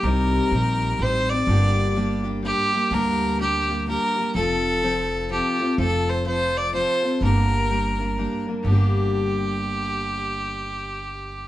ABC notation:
X:1
M:3/4
L:1/8
Q:"Swing" 1/4=125
K:Gm
V:1 name="Fiddle"
B4 c d- | d3 z G2 | B2 G2 B2 | A4 G2 |
A c c d c2 | B4- B z | G6- | G6 |]
V:2 name="Steel-string acoustic guitar"
[C,G,CEG]2 [G,CEG]2 [G,CEG] [CEG] | [G,,D,G,B,DG]2 [G,B,DG] [G,B,DG] [G,B,DG] [G,B,DG] | [G,,D,G,B,DG]2 [G,B,DG] [G,B,DG] [G,B,DG] [G,B,DG] | [F,CFA]2 [F,CFA]2 [F,CFA] [CFA] |
[F,CFA]2 [F,CFA]2 [F,CFA] [CFA] | [G,,D,G,B,DB]2 [G,B,DB] [G,B,DB] [G,B,DB] [G,B,DB] | [G,,D,G,B,DG]6- | [G,,D,G,B,DG]6 |]
V:3 name="Upright bass" clef=bass
C,,2 B,,,2 A,,,2 | G,,,6 | D,,6 | F,,,6 |
F,,,6 | G,,,6 | G,,,6- | G,,,6 |]